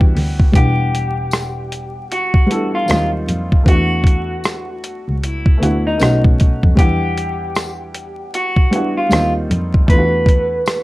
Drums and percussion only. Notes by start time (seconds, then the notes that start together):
0.01 kick
0.17 open hi-hat
0.40 kick
0.54 kick, closed hi-hat
0.95 closed hi-hat
1.31 cross-stick, closed hi-hat, tambourine
1.72 closed hi-hat
2.12 closed hi-hat
2.34 kick
2.51 closed hi-hat
2.88 cross-stick, closed hi-hat, tambourine
3.29 closed hi-hat
3.52 kick
3.66 kick, closed hi-hat
4.04 kick, closed hi-hat
4.44 cross-stick, closed hi-hat, tambourine
4.84 closed hi-hat
5.23 closed hi-hat
5.46 kick
5.63 closed hi-hat
6.00 cross-stick, closed hi-hat, tambourine
6.24 kick
6.40 kick, closed hi-hat
6.63 kick
6.77 kick, closed hi-hat
7.18 closed hi-hat
7.55 cross-stick, closed hi-hat, tambourine
7.95 closed hi-hat
8.34 closed hi-hat
8.56 kick
8.73 closed hi-hat
9.11 cross-stick, closed hi-hat, tambourine
9.51 closed hi-hat
9.74 kick
9.88 kick, closed hi-hat
10.26 kick, closed hi-hat
10.66 cross-stick, closed hi-hat, tambourine